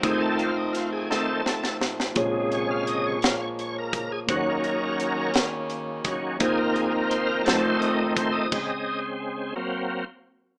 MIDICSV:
0, 0, Header, 1, 6, 480
1, 0, Start_track
1, 0, Tempo, 706714
1, 24, Time_signature, 6, 3, 24, 8
1, 7186, End_track
2, 0, Start_track
2, 0, Title_t, "Tonewheel organ"
2, 0, Program_c, 0, 16
2, 26, Note_on_c, 0, 51, 50
2, 27, Note_on_c, 0, 68, 92
2, 28, Note_on_c, 0, 57, 43
2, 32, Note_on_c, 0, 60, 57
2, 139, Note_on_c, 0, 69, 83
2, 150, Note_off_c, 0, 68, 0
2, 260, Note_on_c, 0, 65, 85
2, 266, Note_off_c, 0, 69, 0
2, 345, Note_off_c, 0, 51, 0
2, 346, Note_off_c, 0, 57, 0
2, 348, Note_off_c, 0, 60, 0
2, 386, Note_off_c, 0, 65, 0
2, 387, Note_on_c, 0, 63, 68
2, 496, Note_on_c, 0, 65, 74
2, 498, Note_off_c, 0, 63, 0
2, 612, Note_off_c, 0, 65, 0
2, 628, Note_on_c, 0, 68, 78
2, 739, Note_off_c, 0, 68, 0
2, 748, Note_on_c, 0, 51, 47
2, 750, Note_on_c, 0, 57, 42
2, 753, Note_on_c, 0, 60, 50
2, 754, Note_on_c, 0, 69, 83
2, 963, Note_off_c, 0, 51, 0
2, 964, Note_off_c, 0, 57, 0
2, 966, Note_off_c, 0, 60, 0
2, 1203, Note_off_c, 0, 69, 0
2, 1474, Note_on_c, 0, 49, 46
2, 1478, Note_on_c, 0, 56, 50
2, 1484, Note_on_c, 0, 48, 60
2, 1730, Note_on_c, 0, 73, 79
2, 1831, Note_off_c, 0, 73, 0
2, 1837, Note_on_c, 0, 77, 81
2, 1944, Note_off_c, 0, 77, 0
2, 1962, Note_on_c, 0, 75, 77
2, 2078, Note_off_c, 0, 75, 0
2, 2083, Note_on_c, 0, 73, 83
2, 2164, Note_off_c, 0, 49, 0
2, 2166, Note_off_c, 0, 56, 0
2, 2169, Note_off_c, 0, 48, 0
2, 2197, Note_on_c, 0, 77, 91
2, 2199, Note_off_c, 0, 73, 0
2, 2316, Note_off_c, 0, 77, 0
2, 2319, Note_on_c, 0, 73, 82
2, 2370, Note_off_c, 0, 73, 0
2, 2442, Note_on_c, 0, 73, 77
2, 2558, Note_off_c, 0, 73, 0
2, 2570, Note_on_c, 0, 70, 76
2, 2671, Note_off_c, 0, 70, 0
2, 2679, Note_on_c, 0, 70, 71
2, 2797, Note_off_c, 0, 70, 0
2, 2800, Note_on_c, 0, 68, 81
2, 2851, Note_off_c, 0, 68, 0
2, 2912, Note_on_c, 0, 51, 54
2, 2917, Note_on_c, 0, 54, 49
2, 2921, Note_on_c, 0, 61, 64
2, 2921, Note_on_c, 0, 66, 86
2, 3038, Note_off_c, 0, 66, 0
2, 3051, Note_on_c, 0, 70, 69
2, 3603, Note_off_c, 0, 51, 0
2, 3606, Note_off_c, 0, 54, 0
2, 3608, Note_off_c, 0, 61, 0
2, 3733, Note_off_c, 0, 70, 0
2, 4107, Note_on_c, 0, 51, 45
2, 4112, Note_on_c, 0, 54, 40
2, 4116, Note_on_c, 0, 61, 49
2, 4324, Note_off_c, 0, 51, 0
2, 4327, Note_off_c, 0, 54, 0
2, 4329, Note_off_c, 0, 61, 0
2, 4346, Note_on_c, 0, 51, 50
2, 4349, Note_on_c, 0, 58, 52
2, 4352, Note_on_c, 0, 68, 83
2, 4357, Note_on_c, 0, 60, 60
2, 4469, Note_on_c, 0, 70, 70
2, 4474, Note_off_c, 0, 68, 0
2, 4577, Note_on_c, 0, 68, 73
2, 4592, Note_off_c, 0, 70, 0
2, 4697, Note_on_c, 0, 70, 71
2, 4707, Note_off_c, 0, 68, 0
2, 4814, Note_off_c, 0, 70, 0
2, 4819, Note_on_c, 0, 72, 82
2, 4931, Note_on_c, 0, 70, 83
2, 4948, Note_off_c, 0, 72, 0
2, 5040, Note_off_c, 0, 51, 0
2, 5042, Note_off_c, 0, 58, 0
2, 5046, Note_off_c, 0, 60, 0
2, 5052, Note_on_c, 0, 51, 55
2, 5055, Note_on_c, 0, 57, 50
2, 5057, Note_on_c, 0, 69, 83
2, 5060, Note_on_c, 0, 60, 67
2, 5064, Note_off_c, 0, 70, 0
2, 5170, Note_on_c, 0, 72, 87
2, 5187, Note_off_c, 0, 69, 0
2, 5293, Note_on_c, 0, 75, 91
2, 5303, Note_off_c, 0, 72, 0
2, 5399, Note_off_c, 0, 75, 0
2, 5407, Note_on_c, 0, 75, 89
2, 5529, Note_off_c, 0, 75, 0
2, 5531, Note_on_c, 0, 72, 78
2, 5653, Note_on_c, 0, 75, 92
2, 5664, Note_off_c, 0, 72, 0
2, 5753, Note_off_c, 0, 51, 0
2, 5755, Note_off_c, 0, 57, 0
2, 5757, Note_off_c, 0, 60, 0
2, 5777, Note_on_c, 0, 49, 58
2, 5785, Note_on_c, 0, 56, 54
2, 5791, Note_on_c, 0, 60, 61
2, 6113, Note_off_c, 0, 75, 0
2, 6475, Note_off_c, 0, 49, 0
2, 6479, Note_off_c, 0, 56, 0
2, 6482, Note_off_c, 0, 60, 0
2, 6492, Note_on_c, 0, 54, 57
2, 6495, Note_on_c, 0, 58, 50
2, 6499, Note_on_c, 0, 60, 64
2, 6818, Note_off_c, 0, 54, 0
2, 6820, Note_off_c, 0, 58, 0
2, 6822, Note_off_c, 0, 60, 0
2, 7186, End_track
3, 0, Start_track
3, 0, Title_t, "Tine electric piano"
3, 0, Program_c, 1, 4
3, 0, Control_c, 1, 64, 127
3, 14, Note_on_c, 1, 57, 53
3, 20, Note_on_c, 1, 63, 50
3, 25, Note_on_c, 1, 65, 57
3, 33, Control_c, 1, 64, 0
3, 33, Note_on_c, 1, 72, 56
3, 169, Control_c, 1, 64, 127
3, 1434, Note_off_c, 1, 57, 0
3, 1437, Note_off_c, 1, 63, 0
3, 1440, Note_off_c, 1, 65, 0
3, 1444, Note_off_c, 1, 72, 0
3, 1459, Note_on_c, 1, 58, 60
3, 1464, Note_on_c, 1, 65, 68
3, 1469, Note_on_c, 1, 68, 59
3, 1470, Note_on_c, 1, 46, 64
3, 1477, Control_c, 1, 64, 0
3, 1477, Note_on_c, 1, 73, 75
3, 1605, Control_c, 1, 64, 127
3, 2162, Note_off_c, 1, 46, 0
3, 2877, Note_off_c, 1, 58, 0
3, 2880, Note_off_c, 1, 65, 0
3, 2882, Note_off_c, 1, 68, 0
3, 2886, Note_off_c, 1, 73, 0
3, 2900, Note_on_c, 1, 58, 58
3, 2908, Note_on_c, 1, 63, 54
3, 2909, Note_on_c, 1, 51, 55
3, 2914, Note_on_c, 1, 66, 51
3, 2917, Control_c, 1, 64, 0
3, 2918, Note_on_c, 1, 72, 53
3, 2957, Note_off_c, 1, 72, 0
3, 2962, Note_on_c, 1, 73, 66
3, 3053, Control_c, 1, 64, 127
3, 3602, Note_off_c, 1, 51, 0
3, 4318, Note_off_c, 1, 58, 0
3, 4322, Note_off_c, 1, 63, 0
3, 4325, Note_off_c, 1, 66, 0
3, 4344, Note_on_c, 1, 58, 63
3, 4347, Note_on_c, 1, 63, 54
3, 4349, Note_off_c, 1, 73, 0
3, 4352, Note_on_c, 1, 65, 60
3, 4353, Note_on_c, 1, 72, 66
3, 4357, Control_c, 1, 64, 0
3, 4479, Control_c, 1, 64, 127
3, 5062, Note_off_c, 1, 63, 0
3, 5064, Note_off_c, 1, 65, 0
3, 5066, Note_off_c, 1, 58, 0
3, 5068, Note_off_c, 1, 72, 0
3, 5068, Note_on_c, 1, 54, 45
3, 5070, Note_on_c, 1, 63, 54
3, 5072, Note_on_c, 1, 65, 57
3, 5076, Note_on_c, 1, 72, 67
3, 5078, Control_c, 1, 64, 0
3, 5112, Note_off_c, 1, 54, 0
3, 5112, Note_on_c, 1, 57, 61
3, 5179, Control_c, 1, 64, 127
3, 5789, Note_off_c, 1, 63, 0
3, 5790, Note_off_c, 1, 65, 0
3, 5792, Note_off_c, 1, 72, 0
3, 5797, Control_c, 1, 64, 0
3, 5810, Note_off_c, 1, 57, 0
3, 7186, End_track
4, 0, Start_track
4, 0, Title_t, "French horn section"
4, 0, Program_c, 2, 60
4, 0, Note_on_c, 2, 51, 66
4, 0, Note_on_c, 2, 60, 77
4, 15, Note_on_c, 2, 57, 67
4, 23, Note_on_c, 2, 53, 57
4, 1434, Note_off_c, 2, 60, 0
4, 1435, Note_off_c, 2, 51, 0
4, 1447, Note_off_c, 2, 57, 0
4, 1457, Note_on_c, 2, 58, 62
4, 1458, Note_on_c, 2, 56, 57
4, 1460, Note_on_c, 2, 73, 73
4, 2880, Note_off_c, 2, 53, 0
4, 2889, Note_off_c, 2, 56, 0
4, 2890, Note_off_c, 2, 73, 0
4, 2907, Note_on_c, 2, 49, 62
4, 2910, Note_on_c, 2, 51, 61
4, 2912, Note_on_c, 2, 61, 74
4, 4334, Note_off_c, 2, 49, 0
4, 4337, Note_off_c, 2, 61, 0
4, 4344, Note_on_c, 2, 60, 72
4, 4345, Note_on_c, 2, 53, 70
4, 5037, Note_off_c, 2, 58, 0
4, 5048, Note_off_c, 2, 51, 0
4, 5065, Note_on_c, 2, 51, 80
4, 5067, Note_on_c, 2, 57, 70
4, 5772, Note_off_c, 2, 53, 0
4, 5772, Note_off_c, 2, 60, 0
4, 5779, Note_off_c, 2, 51, 0
4, 5781, Note_off_c, 2, 57, 0
4, 7186, End_track
5, 0, Start_track
5, 0, Title_t, "Upright bass"
5, 0, Program_c, 3, 32
5, 24, Note_on_c, 3, 29, 82
5, 1199, Note_off_c, 3, 29, 0
5, 1227, Note_on_c, 3, 33, 75
5, 1448, Note_off_c, 3, 33, 0
5, 1468, Note_on_c, 3, 34, 96
5, 2641, Note_off_c, 3, 34, 0
5, 2669, Note_on_c, 3, 37, 68
5, 2890, Note_off_c, 3, 37, 0
5, 2914, Note_on_c, 3, 39, 92
5, 4085, Note_off_c, 3, 39, 0
5, 4109, Note_on_c, 3, 39, 72
5, 4330, Note_off_c, 3, 39, 0
5, 4350, Note_on_c, 3, 29, 93
5, 5043, Note_off_c, 3, 29, 0
5, 5070, Note_on_c, 3, 29, 93
5, 5522, Note_off_c, 3, 29, 0
5, 5546, Note_on_c, 3, 33, 70
5, 5768, Note_off_c, 3, 33, 0
5, 7186, End_track
6, 0, Start_track
6, 0, Title_t, "Drums"
6, 23, Note_on_c, 9, 36, 101
6, 23, Note_on_c, 9, 42, 75
6, 91, Note_off_c, 9, 36, 0
6, 91, Note_off_c, 9, 42, 0
6, 265, Note_on_c, 9, 42, 42
6, 333, Note_off_c, 9, 42, 0
6, 507, Note_on_c, 9, 42, 60
6, 518, Note_on_c, 9, 38, 32
6, 575, Note_off_c, 9, 42, 0
6, 586, Note_off_c, 9, 38, 0
6, 753, Note_on_c, 9, 38, 56
6, 821, Note_off_c, 9, 38, 0
6, 992, Note_on_c, 9, 38, 71
6, 1060, Note_off_c, 9, 38, 0
6, 1111, Note_on_c, 9, 38, 60
6, 1179, Note_off_c, 9, 38, 0
6, 1233, Note_on_c, 9, 38, 82
6, 1300, Note_off_c, 9, 38, 0
6, 1357, Note_on_c, 9, 38, 71
6, 1425, Note_off_c, 9, 38, 0
6, 1464, Note_on_c, 9, 42, 72
6, 1467, Note_on_c, 9, 36, 103
6, 1532, Note_off_c, 9, 42, 0
6, 1535, Note_off_c, 9, 36, 0
6, 1709, Note_on_c, 9, 42, 40
6, 1776, Note_off_c, 9, 42, 0
6, 1951, Note_on_c, 9, 42, 58
6, 2018, Note_off_c, 9, 42, 0
6, 2189, Note_on_c, 9, 42, 68
6, 2201, Note_on_c, 9, 38, 109
6, 2257, Note_off_c, 9, 42, 0
6, 2269, Note_off_c, 9, 38, 0
6, 2438, Note_on_c, 9, 42, 45
6, 2506, Note_off_c, 9, 42, 0
6, 2670, Note_on_c, 9, 36, 88
6, 2673, Note_on_c, 9, 42, 66
6, 2738, Note_off_c, 9, 36, 0
6, 2741, Note_off_c, 9, 42, 0
6, 2911, Note_on_c, 9, 36, 108
6, 2911, Note_on_c, 9, 42, 76
6, 2979, Note_off_c, 9, 36, 0
6, 2979, Note_off_c, 9, 42, 0
6, 3150, Note_on_c, 9, 42, 44
6, 3218, Note_off_c, 9, 42, 0
6, 3394, Note_on_c, 9, 42, 68
6, 3462, Note_off_c, 9, 42, 0
6, 3625, Note_on_c, 9, 42, 66
6, 3638, Note_on_c, 9, 38, 112
6, 3693, Note_off_c, 9, 42, 0
6, 3706, Note_off_c, 9, 38, 0
6, 3869, Note_on_c, 9, 42, 46
6, 3937, Note_off_c, 9, 42, 0
6, 4106, Note_on_c, 9, 42, 73
6, 4108, Note_on_c, 9, 36, 96
6, 4174, Note_off_c, 9, 42, 0
6, 4176, Note_off_c, 9, 36, 0
6, 4348, Note_on_c, 9, 42, 81
6, 4350, Note_on_c, 9, 36, 107
6, 4416, Note_off_c, 9, 42, 0
6, 4418, Note_off_c, 9, 36, 0
6, 4590, Note_on_c, 9, 42, 44
6, 4658, Note_off_c, 9, 42, 0
6, 4830, Note_on_c, 9, 42, 71
6, 4898, Note_off_c, 9, 42, 0
6, 5067, Note_on_c, 9, 42, 69
6, 5080, Note_on_c, 9, 38, 103
6, 5135, Note_off_c, 9, 42, 0
6, 5147, Note_off_c, 9, 38, 0
6, 5310, Note_on_c, 9, 42, 44
6, 5378, Note_off_c, 9, 42, 0
6, 5546, Note_on_c, 9, 36, 100
6, 5548, Note_on_c, 9, 42, 69
6, 5614, Note_off_c, 9, 36, 0
6, 5616, Note_off_c, 9, 42, 0
6, 5788, Note_on_c, 9, 36, 94
6, 5789, Note_on_c, 9, 49, 75
6, 5856, Note_off_c, 9, 36, 0
6, 5857, Note_off_c, 9, 49, 0
6, 7186, End_track
0, 0, End_of_file